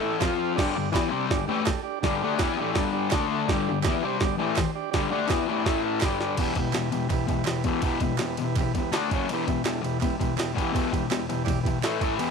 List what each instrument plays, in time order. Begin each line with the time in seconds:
Already playing: distorted electric guitar A2 E3 A3
0.00 transistor combo organ E4 A4 E5
0.19 distorted electric guitar F3 C4, transistor combo organ F4 C5 F5, kick, snare, clap, open hi-hat
0.24 distorted electric guitar F4
0.37 transistor combo organ F4 C5 F5
0.54 distorted electric guitar G2 D3, transistor combo organ D4 G4 D5, kick
0.59 distorted electric guitar G3, snare, crash
0.73 distorted electric guitar G2 D3, transistor combo organ D4 G4 D5
0.92 distorted electric guitar E3 B3 E4, transistor combo organ D4 G4 D5, kick, snare, clap, open hi-hat
1.10 distorted electric guitar C3 G3 C4, transistor combo organ D4 G4 D5
1.30 distorted electric guitar G2 D3, transistor combo organ D4 G4 D5, kick, snare, open hi-hat
1.47 distorted electric guitar A2 E3 A3, transistor combo organ D4 G4 D5
1.66 transistor combo organ D4 G4 A4, kick, snare, clap, open hi-hat
1.83 transistor combo organ D4 G4 D5
2.01 distorted electric guitar G2 D3, transistor combo organ D4 G4 D5, kick, snare, open hi-hat
2.05 distorted electric guitar G3
2.19 distorted electric guitar D3, transistor combo organ D4 G4 D5
2.23 distorted electric guitar A3 D4
2.36 transistor combo organ D4 G4 D5, kick, snare, clap, open hi-hat
2.41 distorted electric guitar E3 B3 E4
2.56 distorted electric guitar A2, transistor combo organ D4 G4 D5
2.61 distorted electric guitar E3 A3
2.73 distorted electric guitar G2 D3, transistor combo organ D4 G4 A4, kick, snare, open hi-hat
2.78 distorted electric guitar G3
2.93 transistor combo organ D4 G4 D5
3.11 distorted electric guitar D3 A3, transistor combo organ D4 A4 D5, kick, snare, clap, open hi-hat
3.15 distorted electric guitar D4
3.32 transistor combo organ D4 A4 E5
3.47 distorted electric guitar G2, transistor combo organ D4 G4 D5, kick, snare, open hi-hat
3.51 distorted electric guitar D3 G3
3.63 transistor combo organ D4 G4 D5
3.69 distorted electric guitar G2 D3
3.83 transistor combo organ D4 G4 D5, kick, snare, clap, open hi-hat
3.88 distorted electric guitar E3 B3 E4
4.01 distorted electric guitar C3 G3, transistor combo organ D4 G4 D5
4.06 distorted electric guitar C4
4.20 distorted electric guitar G2 D3, transistor combo organ D4 G4 D5, kick, snare, open hi-hat
4.38 distorted electric guitar A2 E3 A3, transistor combo organ D4 G4 D5
4.56 transistor combo organ D4 G4 C5, kick, snare, clap, open hi-hat
4.75 transistor combo organ D4 G4 D5
4.91 distorted electric guitar G2 D3 G3, transistor combo organ D4 G4 D5, kick, snare, open hi-hat
5.09 distorted electric guitar D3 A3 D4, transistor combo organ D4 G4 D5
5.28 distorted electric guitar E3 B3 E4, transistor combo organ D4 G4 D5, kick, snare, clap, open hi-hat
5.47 distorted electric guitar A2 E3 A3, transistor combo organ D5
5.51 transistor combo organ D4 G4
5.65 distorted electric guitar A2 E3 A3, transistor combo organ E4 A4, kick, snare, open hi-hat
5.70 transistor combo organ E5
5.85 transistor combo organ E4 A4 E5
6.01 distorted electric guitar G2 D3, kick, snare, clap, open hi-hat
6.05 distorted electric guitar G3, transistor combo organ D4 G4 D5
6.21 transistor combo organ D4 G4 D5, snare
6.37 distorted electric guitar E2 B2 E3, transistor combo organ E4 B4, kick, crash, ride
6.41 transistor combo organ G4
6.55 distorted electric guitar E2 B2, transistor combo organ G4, kick, ride
6.59 transistor combo organ E4 B4
6.73 distorted electric guitar E2 B2, transistor combo organ E4 G4 B4, snare, clap, ride
6.92 distorted electric guitar E2 B2, transistor combo organ E4 G4 B4, ride
7.09 distorted electric guitar E2 B2, transistor combo organ G4 B4, kick, clap, ride
7.13 transistor combo organ E4
7.27 distorted electric guitar E2 B2, transistor combo organ E4 G4 B4, kick, ride
7.45 distorted electric guitar E2 B2, snare, clap, ride
7.49 transistor combo organ E4 G4 B4
7.64 distorted electric guitar E2 B2 E3, transistor combo organ E4 G4 B4, kick, ride
7.82 distorted electric guitar E2 B2 E3, transistor combo organ E4 G4 B4, kick, ride
8.00 distorted electric guitar E2 B2, transistor combo organ E4 G4 B4, kick, ride
8.18 distorted electric guitar E2 B2, snare, clap, ride
8.22 transistor combo organ E4 G4 B4
8.37 distorted electric guitar E2 B2, ride
8.44 transistor combo organ E4 G4 B4
8.55 distorted electric guitar E2 B2, transistor combo organ G4, kick, clap, ride
8.60 transistor combo organ E4 B4
8.75 distorted electric guitar E2 B2, transistor combo organ E4, kick, ride
8.79 transistor combo organ G4 B4
8.92 distorted electric guitar D3 A3 D4, snare, clap, ride
8.97 transistor combo organ D4 A4 D5
9.11 distorted electric guitar F#2 C#3 F#3, transistor combo organ F#4 C#5, kick, ride
9.16 transistor combo organ C#4
9.29 distorted electric guitar E2 B2 E3, transistor combo organ E4, ride
9.33 transistor combo organ G4 B4
9.47 distorted electric guitar E2 B2, transistor combo organ E4 G4 B4, kick, ride
9.65 distorted electric guitar E2 B2, transistor combo organ E4 G4 A4, snare, clap, ride
9.82 distorted electric guitar E2 B2, transistor combo organ E4 G4 B4, ride
10.01 distorted electric guitar E2 B2, transistor combo organ E4 G4 B4, kick, clap, ride
10.20 distorted electric guitar E2 B2, transistor combo organ E4 G4 B4, kick, ride
10.37 distorted electric guitar E2 B2, transistor combo organ E4 G4 B4, snare, clap, ride
10.54 distorted electric guitar E2 B2 E3, kick
10.58 transistor combo organ E4 G4 B4, ride
10.73 distorted electric guitar E2 B2 E3, transistor combo organ E4 G4 B4, kick, ride
10.92 distorted electric guitar E2 B2, transistor combo organ E4 G4 B4, kick, ride
11.11 distorted electric guitar E2 B2, transistor combo organ E4 G4 B4, snare, clap, ride
11.29 distorted electric guitar E2 B2, transistor combo organ E4 G4 B4, ride
11.44 distorted electric guitar E2, transistor combo organ E4 G4 D5, kick, clap, ride
11.48 distorted electric guitar B2
11.63 distorted electric guitar E2, transistor combo organ E4 G4 B4, kick, ride
11.67 distorted electric guitar B2
11.82 distorted electric guitar A2 E3 A3, transistor combo organ E4 A4 E5, snare, clap, ride
12.01 distorted electric guitar A2 E3 A3, transistor combo organ E4 A4 E5, kick, ride
12.16 distorted electric guitar E2 B2, transistor combo organ G4 B4 E5, ride
12.21 distorted electric guitar E3